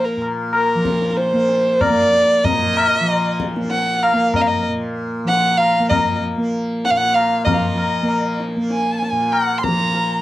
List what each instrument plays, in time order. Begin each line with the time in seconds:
Already playing: tanpura A#2 F3 A#3
0.04 violin A#4
0.17 tanpura A#2
0.22 tabla na
0.53 violin A#4, tabla na
0.75 tanpura F3
0.85 tabla ke
1.02 tabla te
1.17 violin C5, tabla te
1.33 tanpura A#3
1.49 tabla te
1.81 violin D5, tabla na, tabla ge
1.90 tanpura A#3
2.13 tabla te
2.45 tanpura A#2, violin D#5, tabla tin, tabla ge
2.77 tabla na
3.00 tanpura F3
3.09 tabla na
3.40 tabla ke
3.56 tanpura A#3, tabla te
3.71 violin F#5, tabla te
4.03 violin F5, tabla na
4.13 tanpura A#3
4.34 violin D#5, tabla na, tabla ge
4.41 violin F5
4.47 violin D#5
4.69 tanpura A#2
5.24 tanpura F3, violin F#5
5.29 tabla te
5.57 violin F5, tabla na
5.80 tanpura A#3
5.89 violin D#5, tabla na, tabla ge
6.38 tanpura A#3
6.85 violin F#5, tabla te
6.90 tanpura A#2, violin F5
6.97 violin F#5
7.14 violin F5, tabla na
7.45 tanpura F3, violin D#5, tabla tin, tabla ge
7.53 violin D#5 F5
7.78 tabla na
8.03 tanpura A#3
8.09 tabla na
8.40 tabla te
8.56 tanpura A#3
8.70 violin G#5, tabla te
9.02 tabla te
9.12 tanpura A#2
9.32 violin F#5, tabla na
9.58 violin C6
9.63 tanpura F3, violin A#5, tabla ke
9.80 tabla te
9.95 tabla tin